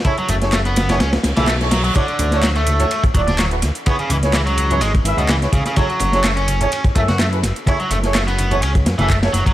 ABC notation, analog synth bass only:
X:1
M:4/4
L:1/16
Q:"Swing 16ths" 1/4=126
K:F#m
V:1 name="Analog synth bass" clef=bass
z2 F,,,6 C,, z C,, B,,,4- B,,, | z2 D,,6 z2 D,,,4 D,, z | z2 C,,6 G,,, z G,,, C,,3 C,, z | z2 F,,,6 z2 F,,4 F,,, z |
z2 F,,,6 C,,2 F,, F,,,3 F,,, z |]